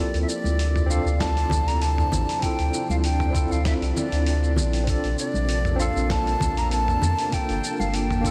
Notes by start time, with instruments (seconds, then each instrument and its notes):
Already playing: tine electric piano C4 E4, string machine D4, flute D5
0.00 string machine C3 F3 D5, tine electric piano F4 A4
0.14 sub bass D2, open hi-hat, shaker
0.22 flute E5
0.29 flute D5, shaker
0.44 sub bass D2, high conga, shaker
0.59 open hi-hat, shaker
0.76 mid tom, shaker
0.86 tine electric piano C4 D4 F4, flute F5
0.91 tine electric piano A4, shaker
1.06 sub bass D2, shaker
1.20 flute A5, kick, snare, open hi-hat, shaker
1.37 open hi-hat, shaker
1.50 sub bass D2, kick, mid tom, low conga, shaker
1.68 flute A#5, open hi-hat, shaker
1.82 flute A5, open hi-hat, shaker
1.98 mid tom, shaker
2.12 sub bass A1, low conga, shaker
2.29 open hi-hat, shaker
2.40 tine electric piano C4 E4 F4, flute G5, kick, open hi-hat, shaker
2.46 tine electric piano A4
2.59 sub bass D2, open hi-hat, shaker
2.74 shaker
2.90 sub bass D2, flute F5, high conga, shaker
3.04 flute G5, open hi-hat, shaker
3.20 mid tom, shaker
3.30 tine electric piano C4 E4 F4
3.35 tine electric piano A4, kick, shaker
3.51 sub bass D2, flute F5, shaker
3.65 flute E5, kick, snare, open hi-hat, shaker
3.82 sub bass C2, open hi-hat, shaker
3.97 flute D5, low conga, shaker
4.12 sub bass D2, open hi-hat, shaker
4.26 open hi-hat, shaker
4.44 shaker
4.56 sub bass A#1, low conga, shaker
4.73 open hi-hat, shaker
4.84 tine electric piano C4 D4, kick, open hi-hat
4.88 string machine C3 A#3 A5, tine electric piano F4 A4, flute D5, shaker
5.04 sub bass A#1, open hi-hat, shaker
5.19 flute D5, shaker
5.34 sub bass A#1, high conga, shaker
5.49 open hi-hat, shaker
5.65 mid tom, shaker
5.76 tine electric piano C4 D4, flute F5
5.80 tine electric piano F4 A4, shaker
5.96 sub bass A#1, shaker
6.10 flute A5, kick, snare, open hi-hat, shaker
6.27 open hi-hat, shaker
6.40 sub bass A#1, kick, mid tom, low conga, shaker
6.57 flute A#5, open hi-hat, shaker
6.71 flute A5, open hi-hat, shaker
6.88 mid tom, shaker
7.02 sub bass F2, low conga, shaker
7.19 open hi-hat, shaker
7.29 string machine F3 G4, tine electric piano A#3 D4, kick, open hi-hat
7.33 tine electric piano F4 A4, flute G5, shaker
7.49 sub bass G1, open hi-hat, shaker
7.64 shaker
7.80 sub bass G1, flute F5, high conga, shaker
7.94 flute G5, open hi-hat, shaker
8.11 mid tom, shaker
8.21 tine electric piano A#3 D4, kick
8.25 tine electric piano F4 A4, shaker